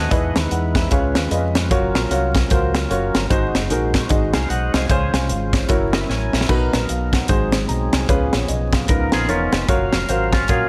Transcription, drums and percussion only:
0.11 kick, closed hi-hat
0.36 snare, closed hi-hat
0.51 closed hi-hat
0.75 kick, snare, closed hi-hat
0.91 kick, closed hi-hat
1.15 snare, closed hi-hat
1.31 closed hi-hat
1.55 snare, closed hi-hat
1.71 kick, closed hi-hat
1.95 snare, closed hi-hat
2.11 closed hi-hat
2.35 kick, snare, closed hi-hat
2.50 kick, closed hi-hat
2.75 snare, closed hi-hat
2.91 closed hi-hat
3.15 snare, closed hi-hat
3.31 kick, closed hi-hat
3.55 snare, closed hi-hat
3.70 closed hi-hat
3.94 kick, snare, closed hi-hat
4.09 kick, closed hi-hat
4.33 snare, closed hi-hat
4.50 closed hi-hat
4.74 snare, closed hi-hat
4.89 kick, closed hi-hat
5.14 snare, closed hi-hat
5.29 closed hi-hat
5.53 kick, snare, closed hi-hat
5.69 kick, closed hi-hat
5.93 snare, closed hi-hat
6.10 snare
6.33 snare
6.41 snare
6.49 kick, splash
6.73 snare, closed hi-hat
6.89 closed hi-hat
7.13 kick, snare, closed hi-hat
7.28 kick, closed hi-hat
7.52 snare, closed hi-hat
7.69 closed hi-hat
7.93 snare, closed hi-hat
8.09 kick, closed hi-hat
8.33 snare, closed hi-hat
8.48 closed hi-hat
8.73 kick, snare, closed hi-hat
8.88 kick, closed hi-hat
9.12 snare, closed hi-hat
9.29 closed hi-hat
9.52 snare, closed hi-hat
9.68 kick, closed hi-hat
9.93 snare, closed hi-hat
10.09 closed hi-hat
10.32 kick, snare, closed hi-hat
10.48 kick, closed hi-hat

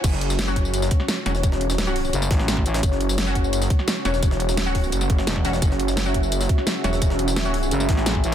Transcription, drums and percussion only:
0.04 kick, closed hi-hat, tambourine, crash
0.13 snare
0.21 closed hi-hat
0.30 snare, tambourine
0.39 snare, closed hi-hat, tambourine
0.48 tambourine
0.56 kick, closed hi-hat
0.65 tambourine
0.74 closed hi-hat, tambourine
0.82 snare, tambourine
0.91 kick, closed hi-hat
1.00 snare
1.08 snare, closed hi-hat, tambourine
1.26 snare, closed hi-hat, tambourine
1.35 snare, tambourine
1.43 kick, closed hi-hat, tambourine
1.52 snare
1.61 closed hi-hat
1.70 snare, tambourine
1.78 snare, closed hi-hat, tambourine
1.87 tambourine
1.96 closed hi-hat, open hi-hat
2.05 tambourine
2.13 closed hi-hat, tambourine
2.22 snare, tambourine
2.31 kick, snare, closed hi-hat
2.39 snare
2.48 snare, closed hi-hat, tambourine
2.57 kick, snare
2.66 closed hi-hat, tambourine
2.74 snare, closed hi-hat, tambourine
2.83 kick, closed hi-hat, tambourine
2.92 snare
3.00 closed hi-hat
3.09 snare, tambourine
3.18 snare, closed hi-hat, tambourine
3.27 tambourine
3.35 kick, closed hi-hat
3.44 tambourine
3.53 closed hi-hat, tambourine
3.62 snare, tambourine
3.70 kick, closed hi-hat
3.79 snare
3.88 snare, closed hi-hat, tambourine
4.05 snare, closed hi-hat, tambourine
4.14 snare, tambourine
4.23 kick, closed hi-hat, tambourine
4.31 snare
4.40 closed hi-hat
4.49 snare, tambourine
4.57 snare, closed hi-hat, tambourine
4.66 tambourine
4.75 kick, closed hi-hat, open hi-hat
4.84 tambourine
4.92 closed hi-hat, tambourine
5.01 snare, tambourine
5.10 kick, closed hi-hat
5.18 snare
5.27 snare, closed hi-hat, tambourine
5.36 kick, snare
5.45 snare, closed hi-hat, tambourine
5.53 snare, tambourine
5.62 kick, closed hi-hat, tambourine
5.71 snare
5.80 closed hi-hat
5.88 snare, tambourine
5.97 snare, closed hi-hat, tambourine
6.06 tambourine
6.14 kick, closed hi-hat
6.23 tambourine
6.32 closed hi-hat, tambourine
6.41 snare, tambourine
6.49 kick, closed hi-hat
6.58 snare
6.67 snare, closed hi-hat, tambourine
6.84 snare, closed hi-hat, tambourine
6.93 snare, tambourine
7.02 kick, closed hi-hat, tambourine
7.10 snare
7.19 closed hi-hat
7.28 snare, tambourine
7.36 snare, closed hi-hat, tambourine
7.45 tambourine
7.54 closed hi-hat, open hi-hat
7.63 tambourine
7.71 closed hi-hat, tambourine
7.80 snare, tambourine
7.89 kick, snare, closed hi-hat
7.97 snare
8.06 snare, closed hi-hat, tambourine
8.15 kick, snare
8.24 closed hi-hat, tambourine

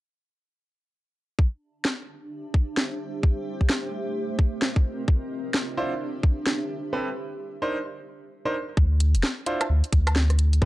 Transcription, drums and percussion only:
1.39 kick
1.85 snare
2.54 kick
2.77 snare
3.23 kick
3.61 kick
3.70 snare
4.39 kick
4.62 snare
4.76 kick
5.08 kick
5.54 snare
6.23 kick
6.46 snare
8.77 kick
9.00 closed hi-hat
9.15 closed hi-hat
9.23 snare
9.46 closed hi-hat
9.61 cross-stick, closed hi-hat, high woodblock
9.84 closed hi-hat
9.93 kick, closed hi-hat
10.07 cross-stick, closed hi-hat, high woodblock
10.16 snare
10.30 cross-stick, closed hi-hat
10.39 closed hi-hat
10.53 closed hi-hat
10.62 kick

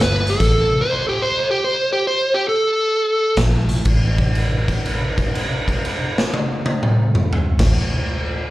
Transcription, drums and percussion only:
0.00 snare, closed hi-hat
0.27 closed hi-hat
0.40 kick, closed hi-hat, crash
3.37 kick, snare, closed hi-hat
3.69 closed hi-hat
3.85 kick, crash
4.18 kick, crash
4.35 crash
4.68 kick, crash
4.85 crash
5.18 kick, crash
5.35 crash
5.68 kick, crash
5.85 crash
6.18 snare
6.34 high tom
6.66 high tom
6.83 mid tom
7.15 mid tom
7.33 floor tom
7.59 kick, snare, crash

